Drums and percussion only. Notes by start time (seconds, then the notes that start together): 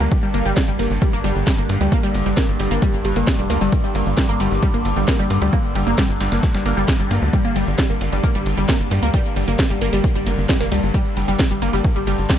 0.00 closed hi-hat
0.12 kick, closed hi-hat
0.23 closed hi-hat
0.34 closed hi-hat, open hi-hat, ride
0.45 closed hi-hat
0.57 kick, snare, closed hi-hat
0.68 closed hi-hat
0.79 snare, closed hi-hat, open hi-hat, ride
0.91 snare, closed hi-hat
1.02 kick, closed hi-hat
1.13 closed hi-hat
1.24 closed hi-hat, open hi-hat, ride
1.36 closed hi-hat
1.47 kick, snare, closed hi-hat
1.58 closed hi-hat
1.69 closed hi-hat, open hi-hat, ride
1.81 closed hi-hat
1.92 kick, closed hi-hat
2.03 closed hi-hat
2.15 closed hi-hat, open hi-hat, ride
2.26 closed hi-hat
2.37 kick, snare, closed hi-hat
2.48 closed hi-hat
2.60 closed hi-hat, open hi-hat, ride
2.71 closed hi-hat
2.82 kick, closed hi-hat
2.94 closed hi-hat
3.05 closed hi-hat, open hi-hat, ride
3.16 closed hi-hat
3.27 kick, snare, closed hi-hat
3.39 closed hi-hat
3.50 open hi-hat, ride
3.61 closed hi-hat
3.72 kick, closed hi-hat
3.84 closed hi-hat
3.95 closed hi-hat, open hi-hat, ride
4.06 closed hi-hat
4.17 kick, snare, closed hi-hat
4.29 closed hi-hat
4.40 closed hi-hat, open hi-hat, ride
4.51 snare, closed hi-hat
4.63 kick, closed hi-hat
4.74 closed hi-hat
4.85 closed hi-hat, open hi-hat, ride
4.97 closed hi-hat
5.08 kick, snare, closed hi-hat
5.19 closed hi-hat
5.30 closed hi-hat, open hi-hat, ride
5.42 closed hi-hat
5.53 kick, closed hi-hat
5.64 closed hi-hat
5.75 closed hi-hat, open hi-hat, ride
5.87 closed hi-hat
5.98 kick, snare, closed hi-hat
6.09 closed hi-hat
6.21 snare, closed hi-hat, open hi-hat, ride
6.32 snare, closed hi-hat
6.43 kick, snare, closed hi-hat
6.55 snare, closed hi-hat
6.66 closed hi-hat, open hi-hat, ride
6.77 closed hi-hat
6.88 kick, snare, closed hi-hat
7.00 closed hi-hat
7.11 open hi-hat, ride
7.22 closed hi-hat
7.33 kick, closed hi-hat
7.45 closed hi-hat
7.56 closed hi-hat, open hi-hat, ride
7.67 closed hi-hat
7.78 kick, snare, closed hi-hat
7.90 closed hi-hat
8.01 snare, closed hi-hat, open hi-hat, ride
8.12 snare, closed hi-hat
8.24 kick, closed hi-hat
8.35 closed hi-hat
8.46 closed hi-hat, open hi-hat, ride
8.57 closed hi-hat
8.69 kick, snare, closed hi-hat
8.80 closed hi-hat
8.91 closed hi-hat, open hi-hat, ride
9.03 closed hi-hat
9.14 kick, closed hi-hat
9.25 closed hi-hat
9.36 open hi-hat, ride
9.48 closed hi-hat
9.59 kick, snare, closed hi-hat
9.70 closed hi-hat
9.81 closed hi-hat, open hi-hat, ride
9.93 closed hi-hat
10.04 kick, closed hi-hat
10.15 closed hi-hat
10.27 closed hi-hat, open hi-hat, ride
10.38 closed hi-hat
10.49 kick, snare, closed hi-hat
10.61 snare, closed hi-hat
10.72 closed hi-hat, open hi-hat, ride
10.83 closed hi-hat
10.94 kick, closed hi-hat
11.06 closed hi-hat
11.17 closed hi-hat, open hi-hat, ride
11.28 closed hi-hat
11.39 kick, snare, closed hi-hat
11.51 closed hi-hat
11.62 closed hi-hat, open hi-hat, ride
11.73 snare, closed hi-hat
11.84 kick, closed hi-hat
11.96 closed hi-hat
12.07 closed hi-hat, open hi-hat, ride
12.18 closed hi-hat
12.30 kick, snare, closed hi-hat